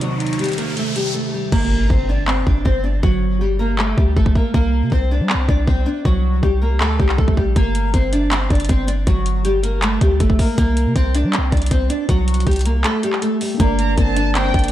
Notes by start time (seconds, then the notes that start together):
Already playing: C3 D#3 A#3 D#4 C5, riser
0.01 F#3 F#4, closed hi-hat
0.20 closed hi-hat
0.27 closed hi-hat
0.33 closed hi-hat
0.39 G3 G4, closed hi-hat
0.44 closed hi-hat
0.45 closed hi-hat
0.49 closed hi-hat
0.52 closed hi-hat
0.53 closed hi-hat
0.58 A#3 A#4, closed hi-hat
0.77 A3 A4, closed hi-hat
0.96 G3 G4, closed hi-hat
1.14 A3 A4
1.34 G3 G4
1.52 G1 A#3 A#4, kick, crash, impact
1.90 G1 C4 C5, kick
2.09 D4 D5
2.28 C4 C5, clap
2.47 G1 D4 D5, kick
2.65 G1 C4 C5, kick
2.84 D4 D5
3.03 G1 F#3 F#4, kick
3.41 G3 G4
3.59 A#3 A#4
3.79 A3 A4, clap
3.97 D2 G3 G4, kick
4.17 G1 A3 A4, kick
4.26 kick
4.35 A#3 A#4, kick
4.54 C2 A#3 A#4, kick
4.83 C3
4.92 C2 C4 C5, kick
5.11 D4 D5
5.20 G3
5.30 C4 C5, clap
5.34 C2
5.49 C2 D4 D5, kick
5.67 C2 C4 C5, kick
5.86 D4 D5
6.05 C2 F#3 F#4, kick
6.43 C2 G3 G4, kick
6.62 A#3 A#4
6.81 D2 A3 A4, clap
7.00 C2 G3 G4, kick
7.09 clap
7.18 C2 A3 A4, kick
7.28 kick
7.37 G3 G4, kick
7.47 A#1
7.56 G1 A#3 A#4, kick, closed hi-hat
7.75 closed hi-hat
7.94 G1 C4 C5, kick, closed hi-hat
8.13 D4 D5, closed hi-hat
8.31 C4 C5, clap, closed hi-hat
8.50 G1 D4 D5, kick, closed hi-hat
8.55 closed hi-hat
8.60 closed hi-hat
8.65 closed hi-hat
8.69 G1 C4 C5, kick, closed hi-hat
8.87 D4 D5, closed hi-hat
9.07 G1 F#3 F#4, kick, closed hi-hat
9.26 closed hi-hat
9.45 G3 G4, closed hi-hat
9.63 A#3 A#4, closed hi-hat
9.82 A3 A4, clap, closed hi-hat
10.01 D2 G3 G4, kick, closed hi-hat
10.20 G1 A3 A4, kick, closed hi-hat
10.30 kick
10.39 A#3 A#4, kick, open hi-hat
10.58 C2 A#3 A#4, kick, closed hi-hat
10.77 closed hi-hat
10.86 C3
10.96 C2 C4 C5, kick, closed hi-hat
11.15 D4 D5, closed hi-hat
11.24 G3
11.33 C4 C5, clap, closed hi-hat
11.38 C2
11.52 C2 D4 D5, kick, closed hi-hat
11.57 closed hi-hat
11.62 closed hi-hat
11.66 closed hi-hat
11.71 C2 C4 C5, kick, closed hi-hat
11.90 D4 D5, closed hi-hat
12.09 C2 F#3 F#4, kick, closed hi-hat
12.28 closed hi-hat
12.34 closed hi-hat
12.40 closed hi-hat
12.47 C2 G3 G4, kick, closed hi-hat
12.51 closed hi-hat
12.53 closed hi-hat
12.56 closed hi-hat
12.59 closed hi-hat
12.61 closed hi-hat
12.65 A#3 A#4, closed hi-hat
12.84 A3 A4, clap, closed hi-hat
13.03 G3 G4, closed hi-hat
13.13 clap
13.22 A3 A4, closed hi-hat
13.41 G3 G4, open hi-hat
13.55 A#3 D4
13.60 G1 D3 A#3 A#4, kick, closed hi-hat
13.64 D5
13.79 A#5, closed hi-hat
13.98 G1 C4 C5 A5, kick, closed hi-hat
14.16 D4 D5, closed hi-hat
14.35 C4 C5 G5, clap, closed hi-hat
14.54 G1 D4 D5, kick, closed hi-hat
14.59 closed hi-hat
14.64 closed hi-hat
14.68 closed hi-hat